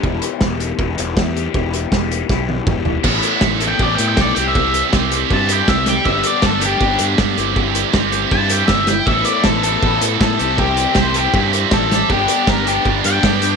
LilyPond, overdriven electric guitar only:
\new Staff \with { instrumentName = "Overdriven electric guitar" } { \time 4/4 \key c \major \tempo 4 = 159 <e b e' g'>8 <b e' g'>8 <e b e' g'>4 <e b e' g'>8 <b e' g'>8 <e b e' g'>8 <b e' g'>8 | <e b e' g'>8 <b e' g'>8 <e b e' g'>4 <e b e' g'>8 <b e' g'>8 <e b e' g'>8 <b e' g'>8 | <a b e' a'>4. <a b e' a'>2 <c g c' e' g'>8~ | <c g c' e' g'>4 <c g c' e' g'>2~ <c g c' e' g'>8 r8 |
<g b d' g'>4. <g b d' g'>2 <g c' e' g'>8~ | <g c' e' g'>4 <g c' e' g'>2~ <g c' e' g'>8 r8 | <a b e' a'>4. <a b e' a'>2 <c g c' e' g'>8~ | <c g c' e' g'>4 <c g c' e' g'>2~ <c g c' e' g'>8 r8 |
<g b d' g'>4. <g b d' g'>2~ <g b d' g'>8 | }